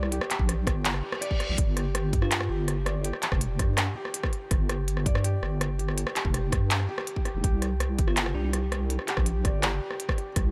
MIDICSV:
0, 0, Header, 1, 6, 480
1, 0, Start_track
1, 0, Tempo, 365854
1, 156, Time_signature, 4, 2, 24, 8
1, 13794, End_track
2, 0, Start_track
2, 0, Title_t, "Felt piano"
2, 0, Program_c, 0, 0
2, 0, Control_c, 0, 64, 127
2, 0, Note_on_c, 0, 67, 78
2, 0, Note_on_c, 0, 74, 76
2, 142, Note_off_c, 0, 74, 0
2, 150, Note_off_c, 0, 67, 0
2, 150, Note_on_c, 0, 67, 99
2, 849, Note_off_c, 0, 67, 0
2, 872, Note_on_c, 0, 67, 78
2, 1011, Note_off_c, 0, 67, 0
2, 1355, Note_on_c, 0, 67, 78
2, 1493, Note_off_c, 0, 67, 0
2, 1592, Note_on_c, 0, 74, 103
2, 1731, Note_off_c, 0, 74, 0
2, 2093, Control_c, 0, 64, 0
2, 2313, Note_on_c, 0, 67, 76
2, 2359, Control_c, 0, 64, 127
2, 2536, Note_off_c, 0, 67, 0
2, 2556, Note_on_c, 0, 67, 78
2, 3250, Note_off_c, 0, 67, 0
2, 3270, Note_on_c, 0, 67, 78
2, 3729, Note_off_c, 0, 67, 0
2, 3745, Note_on_c, 0, 74, 75
2, 3979, Note_off_c, 0, 74, 0
2, 3990, Note_on_c, 0, 67, 97
2, 4688, Note_off_c, 0, 67, 0
2, 4707, Note_on_c, 0, 67, 73
2, 4849, Note_off_c, 0, 67, 0
2, 5190, Note_on_c, 0, 67, 83
2, 5411, Note_off_c, 0, 67, 0
2, 5430, Note_on_c, 0, 67, 82
2, 6130, Note_off_c, 0, 67, 0
2, 6153, Note_on_c, 0, 67, 76
2, 6611, Note_off_c, 0, 67, 0
2, 6636, Note_on_c, 0, 74, 81
2, 6864, Note_off_c, 0, 74, 0
2, 6874, Note_on_c, 0, 67, 103
2, 7571, Note_off_c, 0, 67, 0
2, 7594, Note_on_c, 0, 67, 78
2, 7732, Note_off_c, 0, 67, 0
2, 8075, Note_on_c, 0, 67, 78
2, 8294, Note_off_c, 0, 67, 0
2, 8314, Note_on_c, 0, 67, 77
2, 9011, Note_off_c, 0, 67, 0
2, 9035, Note_on_c, 0, 67, 106
2, 9252, Note_off_c, 0, 67, 0
2, 9513, Note_on_c, 0, 67, 95
2, 9731, Note_off_c, 0, 67, 0
2, 9753, Note_on_c, 0, 67, 96
2, 9774, Control_c, 0, 64, 0
2, 9985, Control_c, 0, 64, 127
2, 10451, Note_off_c, 0, 67, 0
2, 10471, Note_on_c, 0, 67, 72
2, 10611, Note_off_c, 0, 67, 0
2, 10952, Note_on_c, 0, 67, 83
2, 11171, Note_off_c, 0, 67, 0
2, 11191, Note_on_c, 0, 67, 79
2, 11890, Note_off_c, 0, 67, 0
2, 11911, Note_on_c, 0, 67, 99
2, 12370, Note_off_c, 0, 67, 0
2, 12388, Note_on_c, 0, 74, 76
2, 12620, Note_off_c, 0, 74, 0
2, 12630, Note_on_c, 0, 67, 104
2, 13330, Note_off_c, 0, 67, 0
2, 13353, Note_on_c, 0, 67, 73
2, 13491, Note_off_c, 0, 67, 0
2, 13794, End_track
3, 0, Start_track
3, 0, Title_t, "FM electric piano"
3, 0, Program_c, 1, 5
3, 2911, Note_on_c, 1, 65, 91
3, 3586, Note_off_c, 1, 65, 0
3, 10593, Note_on_c, 1, 65, 88
3, 10950, Note_on_c, 1, 62, 91
3, 11030, Note_off_c, 1, 62, 0
3, 11077, Note_on_c, 1, 62, 82
3, 11154, Note_off_c, 1, 62, 0
3, 11267, Note_off_c, 1, 65, 0
3, 13794, End_track
4, 0, Start_track
4, 0, Title_t, "Wobble bass"
4, 0, Program_c, 2, 39
4, 0, Note_on_c, 2, 36, 87
4, 262, Note_off_c, 2, 36, 0
4, 516, Note_on_c, 2, 34, 97
4, 875, Note_on_c, 2, 31, 93
4, 895, Note_off_c, 2, 34, 0
4, 1341, Note_off_c, 2, 31, 0
4, 1962, Note_on_c, 2, 34, 93
4, 2070, Note_off_c, 2, 34, 0
4, 2078, Note_on_c, 2, 31, 92
4, 2795, Note_on_c, 2, 43, 94
4, 2815, Note_off_c, 2, 31, 0
4, 3261, Note_off_c, 2, 43, 0
4, 3277, Note_on_c, 2, 31, 83
4, 4101, Note_off_c, 2, 31, 0
4, 4355, Note_on_c, 2, 29, 95
4, 4715, Note_on_c, 2, 43, 94
4, 4735, Note_off_c, 2, 29, 0
4, 5180, Note_off_c, 2, 43, 0
4, 5918, Note_on_c, 2, 31, 102
4, 6638, Note_on_c, 2, 43, 95
4, 6657, Note_off_c, 2, 31, 0
4, 7102, Note_off_c, 2, 43, 0
4, 7120, Note_on_c, 2, 31, 84
4, 7943, Note_off_c, 2, 31, 0
4, 8200, Note_on_c, 2, 29, 100
4, 8559, Note_on_c, 2, 43, 91
4, 8579, Note_off_c, 2, 29, 0
4, 9022, Note_off_c, 2, 43, 0
4, 9640, Note_on_c, 2, 29, 89
4, 9749, Note_off_c, 2, 29, 0
4, 9760, Note_on_c, 2, 36, 92
4, 10478, Note_on_c, 2, 31, 91
4, 10498, Note_off_c, 2, 36, 0
4, 10942, Note_off_c, 2, 31, 0
4, 10959, Note_on_c, 2, 36, 88
4, 11782, Note_off_c, 2, 36, 0
4, 12037, Note_on_c, 2, 34, 94
4, 12396, Note_on_c, 2, 31, 92
4, 12416, Note_off_c, 2, 34, 0
4, 12861, Note_off_c, 2, 31, 0
4, 13595, Note_on_c, 2, 36, 91
4, 13794, Note_off_c, 2, 36, 0
4, 13794, End_track
5, 0, Start_track
5, 0, Title_t, "Reverse cymbal"
5, 0, Program_c, 3, 119
5, 1117, Note_on_c, 3, 60, 61
5, 2077, Note_off_c, 3, 60, 0
5, 13794, End_track
6, 0, Start_track
6, 0, Title_t, "Drums"
6, 37, Note_on_c, 9, 37, 58
6, 158, Note_on_c, 9, 42, 86
6, 169, Note_off_c, 9, 37, 0
6, 280, Note_on_c, 9, 37, 83
6, 290, Note_off_c, 9, 42, 0
6, 400, Note_on_c, 9, 39, 63
6, 400, Note_on_c, 9, 42, 73
6, 411, Note_off_c, 9, 37, 0
6, 517, Note_on_c, 9, 36, 56
6, 531, Note_off_c, 9, 39, 0
6, 531, Note_off_c, 9, 42, 0
6, 642, Note_on_c, 9, 37, 54
6, 642, Note_on_c, 9, 42, 83
6, 648, Note_off_c, 9, 36, 0
6, 773, Note_off_c, 9, 37, 0
6, 773, Note_off_c, 9, 42, 0
6, 876, Note_on_c, 9, 36, 100
6, 882, Note_on_c, 9, 37, 87
6, 882, Note_on_c, 9, 42, 65
6, 1007, Note_off_c, 9, 36, 0
6, 1013, Note_off_c, 9, 37, 0
6, 1013, Note_off_c, 9, 42, 0
6, 1118, Note_on_c, 9, 39, 125
6, 1118, Note_on_c, 9, 42, 83
6, 1237, Note_on_c, 9, 37, 54
6, 1249, Note_off_c, 9, 39, 0
6, 1249, Note_off_c, 9, 42, 0
6, 1368, Note_off_c, 9, 37, 0
6, 1475, Note_on_c, 9, 37, 88
6, 1599, Note_on_c, 9, 42, 86
6, 1606, Note_off_c, 9, 37, 0
6, 1717, Note_on_c, 9, 36, 61
6, 1731, Note_off_c, 9, 42, 0
6, 1838, Note_on_c, 9, 37, 55
6, 1838, Note_on_c, 9, 42, 38
6, 1848, Note_off_c, 9, 36, 0
6, 1969, Note_off_c, 9, 37, 0
6, 1969, Note_off_c, 9, 42, 0
6, 2075, Note_on_c, 9, 42, 89
6, 2076, Note_on_c, 9, 36, 114
6, 2206, Note_off_c, 9, 42, 0
6, 2207, Note_off_c, 9, 36, 0
6, 2319, Note_on_c, 9, 37, 58
6, 2319, Note_on_c, 9, 42, 74
6, 2450, Note_off_c, 9, 37, 0
6, 2450, Note_off_c, 9, 42, 0
6, 2556, Note_on_c, 9, 37, 85
6, 2556, Note_on_c, 9, 42, 84
6, 2688, Note_off_c, 9, 37, 0
6, 2688, Note_off_c, 9, 42, 0
6, 2795, Note_on_c, 9, 36, 106
6, 2798, Note_on_c, 9, 42, 69
6, 2915, Note_on_c, 9, 37, 54
6, 2926, Note_off_c, 9, 36, 0
6, 2929, Note_off_c, 9, 42, 0
6, 3037, Note_on_c, 9, 39, 125
6, 3037, Note_on_c, 9, 42, 86
6, 3046, Note_off_c, 9, 37, 0
6, 3155, Note_on_c, 9, 37, 85
6, 3168, Note_off_c, 9, 39, 0
6, 3168, Note_off_c, 9, 42, 0
6, 3287, Note_off_c, 9, 37, 0
6, 3516, Note_on_c, 9, 37, 59
6, 3516, Note_on_c, 9, 42, 86
6, 3647, Note_off_c, 9, 37, 0
6, 3647, Note_off_c, 9, 42, 0
6, 3756, Note_on_c, 9, 37, 86
6, 3756, Note_on_c, 9, 42, 41
6, 3887, Note_off_c, 9, 37, 0
6, 3887, Note_off_c, 9, 42, 0
6, 3995, Note_on_c, 9, 42, 86
6, 4112, Note_on_c, 9, 37, 54
6, 4126, Note_off_c, 9, 42, 0
6, 4232, Note_on_c, 9, 39, 70
6, 4232, Note_on_c, 9, 42, 76
6, 4243, Note_off_c, 9, 37, 0
6, 4353, Note_on_c, 9, 36, 63
6, 4353, Note_on_c, 9, 37, 75
6, 4363, Note_off_c, 9, 39, 0
6, 4363, Note_off_c, 9, 42, 0
6, 4475, Note_on_c, 9, 42, 85
6, 4484, Note_off_c, 9, 37, 0
6, 4485, Note_off_c, 9, 36, 0
6, 4607, Note_off_c, 9, 42, 0
6, 4715, Note_on_c, 9, 36, 109
6, 4715, Note_on_c, 9, 37, 60
6, 4715, Note_on_c, 9, 42, 68
6, 4846, Note_off_c, 9, 36, 0
6, 4846, Note_off_c, 9, 37, 0
6, 4846, Note_off_c, 9, 42, 0
6, 4954, Note_on_c, 9, 37, 82
6, 4954, Note_on_c, 9, 39, 127
6, 4954, Note_on_c, 9, 42, 83
6, 5085, Note_off_c, 9, 37, 0
6, 5085, Note_off_c, 9, 39, 0
6, 5085, Note_off_c, 9, 42, 0
6, 5316, Note_on_c, 9, 37, 54
6, 5432, Note_on_c, 9, 42, 93
6, 5447, Note_off_c, 9, 37, 0
6, 5556, Note_on_c, 9, 36, 64
6, 5556, Note_on_c, 9, 37, 78
6, 5563, Note_off_c, 9, 42, 0
6, 5678, Note_on_c, 9, 42, 39
6, 5687, Note_off_c, 9, 37, 0
6, 5688, Note_off_c, 9, 36, 0
6, 5809, Note_off_c, 9, 42, 0
6, 5916, Note_on_c, 9, 37, 55
6, 5916, Note_on_c, 9, 42, 87
6, 5917, Note_on_c, 9, 36, 115
6, 6047, Note_off_c, 9, 37, 0
6, 6047, Note_off_c, 9, 42, 0
6, 6048, Note_off_c, 9, 36, 0
6, 6159, Note_on_c, 9, 37, 82
6, 6159, Note_on_c, 9, 42, 69
6, 6290, Note_off_c, 9, 37, 0
6, 6290, Note_off_c, 9, 42, 0
6, 6401, Note_on_c, 9, 42, 82
6, 6519, Note_on_c, 9, 37, 55
6, 6533, Note_off_c, 9, 42, 0
6, 6638, Note_on_c, 9, 36, 112
6, 6642, Note_on_c, 9, 42, 70
6, 6651, Note_off_c, 9, 37, 0
6, 6760, Note_on_c, 9, 37, 77
6, 6769, Note_off_c, 9, 36, 0
6, 6773, Note_off_c, 9, 42, 0
6, 6880, Note_on_c, 9, 42, 83
6, 6891, Note_off_c, 9, 37, 0
6, 7012, Note_off_c, 9, 42, 0
6, 7122, Note_on_c, 9, 37, 53
6, 7253, Note_off_c, 9, 37, 0
6, 7361, Note_on_c, 9, 37, 86
6, 7361, Note_on_c, 9, 42, 82
6, 7492, Note_off_c, 9, 37, 0
6, 7492, Note_off_c, 9, 42, 0
6, 7601, Note_on_c, 9, 42, 39
6, 7721, Note_on_c, 9, 37, 52
6, 7733, Note_off_c, 9, 42, 0
6, 7841, Note_on_c, 9, 42, 85
6, 7852, Note_off_c, 9, 37, 0
6, 7960, Note_on_c, 9, 37, 78
6, 7972, Note_off_c, 9, 42, 0
6, 8083, Note_on_c, 9, 39, 70
6, 8083, Note_on_c, 9, 42, 70
6, 8091, Note_off_c, 9, 37, 0
6, 8198, Note_on_c, 9, 36, 64
6, 8214, Note_off_c, 9, 39, 0
6, 8214, Note_off_c, 9, 42, 0
6, 8321, Note_on_c, 9, 37, 49
6, 8321, Note_on_c, 9, 42, 76
6, 8329, Note_off_c, 9, 36, 0
6, 8452, Note_off_c, 9, 37, 0
6, 8452, Note_off_c, 9, 42, 0
6, 8559, Note_on_c, 9, 36, 104
6, 8562, Note_on_c, 9, 37, 83
6, 8562, Note_on_c, 9, 42, 69
6, 8690, Note_off_c, 9, 36, 0
6, 8693, Note_off_c, 9, 37, 0
6, 8693, Note_off_c, 9, 42, 0
6, 8801, Note_on_c, 9, 39, 127
6, 8801, Note_on_c, 9, 42, 78
6, 8918, Note_on_c, 9, 37, 50
6, 8932, Note_off_c, 9, 39, 0
6, 8932, Note_off_c, 9, 42, 0
6, 9049, Note_off_c, 9, 37, 0
6, 9157, Note_on_c, 9, 37, 80
6, 9278, Note_on_c, 9, 42, 83
6, 9288, Note_off_c, 9, 37, 0
6, 9399, Note_on_c, 9, 36, 67
6, 9409, Note_off_c, 9, 42, 0
6, 9517, Note_on_c, 9, 37, 50
6, 9517, Note_on_c, 9, 42, 36
6, 9530, Note_off_c, 9, 36, 0
6, 9648, Note_off_c, 9, 37, 0
6, 9648, Note_off_c, 9, 42, 0
6, 9759, Note_on_c, 9, 36, 115
6, 9760, Note_on_c, 9, 42, 77
6, 9890, Note_off_c, 9, 36, 0
6, 9891, Note_off_c, 9, 42, 0
6, 9998, Note_on_c, 9, 37, 51
6, 9998, Note_on_c, 9, 42, 68
6, 10130, Note_off_c, 9, 37, 0
6, 10130, Note_off_c, 9, 42, 0
6, 10238, Note_on_c, 9, 37, 76
6, 10238, Note_on_c, 9, 42, 73
6, 10369, Note_off_c, 9, 37, 0
6, 10369, Note_off_c, 9, 42, 0
6, 10477, Note_on_c, 9, 42, 65
6, 10478, Note_on_c, 9, 36, 105
6, 10597, Note_on_c, 9, 37, 50
6, 10608, Note_off_c, 9, 42, 0
6, 10609, Note_off_c, 9, 36, 0
6, 10716, Note_on_c, 9, 39, 124
6, 10716, Note_on_c, 9, 42, 80
6, 10728, Note_off_c, 9, 37, 0
6, 10839, Note_on_c, 9, 37, 74
6, 10847, Note_off_c, 9, 39, 0
6, 10847, Note_off_c, 9, 42, 0
6, 10970, Note_off_c, 9, 37, 0
6, 11196, Note_on_c, 9, 37, 56
6, 11196, Note_on_c, 9, 42, 81
6, 11327, Note_off_c, 9, 37, 0
6, 11327, Note_off_c, 9, 42, 0
6, 11440, Note_on_c, 9, 37, 72
6, 11440, Note_on_c, 9, 42, 36
6, 11571, Note_off_c, 9, 37, 0
6, 11571, Note_off_c, 9, 42, 0
6, 11678, Note_on_c, 9, 42, 80
6, 11794, Note_on_c, 9, 37, 52
6, 11809, Note_off_c, 9, 42, 0
6, 11912, Note_on_c, 9, 39, 63
6, 11912, Note_on_c, 9, 42, 65
6, 11925, Note_off_c, 9, 37, 0
6, 12030, Note_on_c, 9, 37, 76
6, 12036, Note_on_c, 9, 36, 57
6, 12044, Note_off_c, 9, 39, 0
6, 12044, Note_off_c, 9, 42, 0
6, 12151, Note_on_c, 9, 42, 73
6, 12161, Note_off_c, 9, 37, 0
6, 12168, Note_off_c, 9, 36, 0
6, 12282, Note_off_c, 9, 42, 0
6, 12396, Note_on_c, 9, 36, 101
6, 12396, Note_on_c, 9, 37, 56
6, 12396, Note_on_c, 9, 42, 64
6, 12527, Note_off_c, 9, 36, 0
6, 12528, Note_off_c, 9, 37, 0
6, 12528, Note_off_c, 9, 42, 0
6, 12635, Note_on_c, 9, 37, 82
6, 12635, Note_on_c, 9, 39, 116
6, 12635, Note_on_c, 9, 42, 82
6, 12767, Note_off_c, 9, 37, 0
6, 12767, Note_off_c, 9, 39, 0
6, 12767, Note_off_c, 9, 42, 0
6, 12996, Note_on_c, 9, 37, 55
6, 13117, Note_on_c, 9, 42, 80
6, 13127, Note_off_c, 9, 37, 0
6, 13235, Note_on_c, 9, 36, 58
6, 13239, Note_on_c, 9, 37, 84
6, 13248, Note_off_c, 9, 42, 0
6, 13357, Note_on_c, 9, 42, 37
6, 13366, Note_off_c, 9, 36, 0
6, 13370, Note_off_c, 9, 37, 0
6, 13488, Note_off_c, 9, 42, 0
6, 13593, Note_on_c, 9, 37, 58
6, 13593, Note_on_c, 9, 42, 87
6, 13595, Note_on_c, 9, 36, 114
6, 13725, Note_off_c, 9, 37, 0
6, 13725, Note_off_c, 9, 42, 0
6, 13726, Note_off_c, 9, 36, 0
6, 13794, End_track
0, 0, End_of_file